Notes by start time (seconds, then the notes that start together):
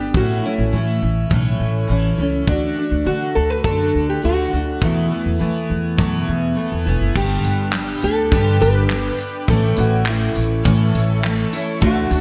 Already playing: G3 B3 D4 G4
0.14 A1 A2 E3 A3 C#4 E4 F#4, kick
0.43 A3 C#4 E4
0.58 A1
0.72 A2 E3 A3 C#4 E4
1.02 A1
1.30 B1 A2 E3 A3 C#4 E4, kick
1.60 A1
1.88 A1 E3 A3 C#4 E4
2.18 C#2 A3 C#4 E4
2.47 D2 D3 A3 D4 F#4, kick
2.76 A3 D4 F#4
2.91 D2
3.04 D3 A3 D4 F#4
3.35 D2 A4
3.50 B4
3.64 F#2 D3 A3 D4 F#4 A4, kick
3.95 D2
4.09 G4
4.22 D2 D3 A3 D4 F#4
4.51 D2 A3 D4 F#4
4.81 E2 B2 E3 A3 B3 E4, kick
5.10 E3 A3 B3 E4
5.26 E2
5.39 E3 A3 B3 E4
5.70 E2
5.97 E2 F#2 B2 E3 A3 B3 E4, kick
6.28 E2
6.55 E3 A3 B3 E4
6.72 E2
6.85 E1 E3 A3 B3 E4
7.01 F#1
7.15 G1 G2 D3 G3 B3 D4 G4 B4 G5 D6, kick, crash
7.44 G1, tambourine
7.73 G3 B3 D4 G4, clap
8.02 D2 A4, tambourine
8.31 G2 D3 G3 B3 D4 G4, kick
8.61 G1 B4, tambourine
8.89 G3 B3 D4 G4, clap
9.18 tambourine
9.48 A1 A2 E3 A3 C#4 E4 A4 E5 C#6, kick
9.77 A1 F#4, tambourine
10.06 E3 A3 C#4 E4, clap
10.35 A1, tambourine
10.64 A2 E3 A3 C#4 E4, kick
10.94 A1, tambourine
11.22 E3 A3 C#4 E4, clap
11.53 A3 C#4 E4, tambourine
11.80 D2 D3 A3 D4 F#4 A4 F#5 D6, kick
12.10 D2 A3 D4 F#4, tambourine